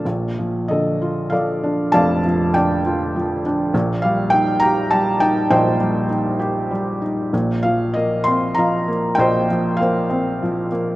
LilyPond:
<<
  \new Staff \with { instrumentName = "Felt piano" } { \time 3/4 \key bes \major \tempo 4 = 99 << { r4 ees''4 f''4 | a''4 g''4. r8 | r8 f''8 g''8 bes''8 a''8 g''8 | g''4 r2 |
r8 f''8 ees''8 c'''8 bes''4 | g''4 f''4. r8 | } \\ { r4 a'4 <a' d''>4 | <d'' f''>4 d''4. r8 | r2. | <c'' ees''>4. r4. |
r2 <ees'' f''>4 | <c'' ees''>4 c''4. r8 | } >> }
  \new Staff \with { instrumentName = "Felt piano" } { \clef bass \time 3/4 \key bes \major <bes,, bes,>8 f8 d8 f'8 f8 d'8 | <f,, f,>8 f8 d'8 f'8 f8 d'8 | <bes,, bes,>8 g8 ees'8 g'8 g8 ees'8 | <bes,, bes,>8 g8 ees'8 g'8 g8 ees'8 |
<bes,, bes,>8 f8 bes8 c'8 f8 bes8 | <bes,, bes,>8 f8 bes8 c'8 f8 bes8 | }
>>